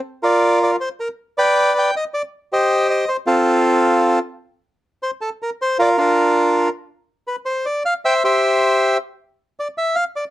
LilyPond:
\new Staff \with { instrumentName = "Bandoneon" } { \time 3/4 \key f \mixolydian \tempo 4 = 157 << { r8 d''4 d''8 c''8 bes'8 | r8 g''4 g''8 ees''8 d''8 | r8 ees''4 ees''8 c''8 a'8~ | a'2 r4 |
\key c \mixolydian r4 c''8 a'8 bes'8 c''8 | d''8 bes'2 r8 | r4 b'8 c''8 d''8 f''8 | g''8 e''2 r8 |
r4 d''8 e''8 f''8 d''8 | } \\ { r8 <f' bes'>4. r4 | r8 <b' d''>4. r4 | r8 <g' c''>4. r8 <c' f'>8~ | <c' f'>2 r4 |
r2. | <f' bes'>8 <d' f'>2 r8 | r2. | <c'' e''>8 <g' c''>2 r8 |
r2. | } >> }